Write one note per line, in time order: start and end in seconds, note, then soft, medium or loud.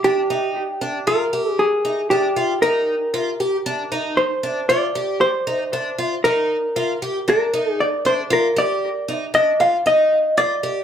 0.04 0.20 D4 medium
0.04 1.07 G4 medium
0.30 0.62 D#4 medium
0.81 0.97 D4 medium
1.07 1.23 F4 medium
1.07 1.59 A#4 medium
1.33 1.65 G4 medium
1.59 2.10 G#4 medium
1.85 2.01 D#4 medium
2.10 2.27 D4 medium
2.10 2.62 G4 medium
2.36 2.52 F4 medium
2.62 2.94 D#4 medium
2.62 4.22 A#4 medium
3.14 3.30 F4 medium
3.40 3.56 G4 medium
3.66 3.82 D4 medium
3.92 4.23 D#4 medium
4.17 4.65 C5 medium
4.43 4.59 D4 medium
4.69 4.85 F4 medium
4.69 5.17 D5 medium
4.95 5.27 G4 medium
5.21 6.27 C5 medium
5.47 5.63 D#4 medium
5.73 5.89 D4 medium
5.99 6.14 F4 medium
6.24 6.56 D#4 medium
6.24 6.98 A#4 medium
6.76 6.92 F4 medium
7.02 7.18 G4 medium
7.28 7.44 D4 medium
7.28 7.72 A#4 medium
7.54 7.85 D#4 medium
7.72 7.82 G#4 medium
7.80 8.04 D5 medium
8.05 8.21 D4 medium
8.05 8.13 C5 medium
8.30 8.47 F4 medium
8.30 8.59 A#4 medium
8.56 8.88 G4 medium
8.56 9.31 D5 medium
9.08 9.24 D#4 medium
9.34 9.50 D4 medium
9.34 9.60 D#5 medium
9.60 9.76 F4 medium
9.60 9.86 F5 medium
9.86 10.18 D#4 medium
9.86 10.37 D#5 medium
10.38 10.54 F4 medium
10.38 10.84 D5 medium
10.63 10.79 G4 medium